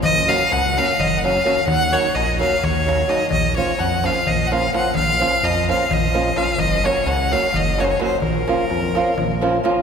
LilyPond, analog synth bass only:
\new Staff \with { instrumentName = "Analog synth bass" } { \clef bass \time 7/8 \key bes \minor \tempo 4 = 128 ges,,4 des,4 ges,,4. | ees,4 bes,,4 ees,4. | bes,,4 f,4 bes,,4. | bes,,4 f,4 bes,,4. |
ges,,4 des,4 ges,,4. | bes,,4 f,4 bes,,4. | }